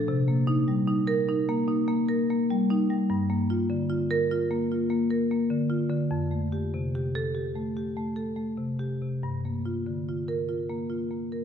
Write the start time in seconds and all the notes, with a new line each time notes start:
0.08 C3
0.28 A#3
0.47 D#4
0.68 G3
0.87 D#4
1.07 A#4
1.29 D#4
1.49 A#3
1.68 D#4
1.88 A#3
2.09 A#4
2.30 A#3
2.50 G3
2.70 D#4
2.90 G3
3.10 G2
3.30 A#3
3.50 F4
3.70 D3
3.90 F4
4.11 A#4
4.31 F4
4.51 A#3
4.72 F4
4.90 A#3
5.10 A#4
5.31 A#3
5.50 D3
5.70 F4
5.90 D3
6.11 F2
6.31 A3
6.52 G4
6.74 C3
6.95 G4
7.15 A4
7.35 G4
7.56 A3
7.77 G4
7.97 A3
8.16 A4
8.36 A3
8.57 C3
8.79 G4
9.02 C3
9.23 G2
9.45 A#3
9.65 F4
9.86 D3
10.09 F4
10.28 A#4
10.49 F4
10.69 A#3
10.90 F4
11.11 A#3
11.32 A#4